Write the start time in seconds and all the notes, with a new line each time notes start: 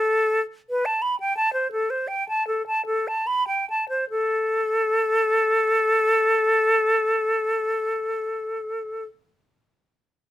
Already playing: A4
0.70 B4
0.85 A5
1.02 B5
1.20 G5
1.37 A5
1.53 C5
1.72 A4
1.90 C5
2.08 G5
2.29 A5
2.47 A4
2.67 A5
2.86 A4
3.08 A5
3.27 B5
3.48 G5
3.70 A5
3.89 C5
4.10 A4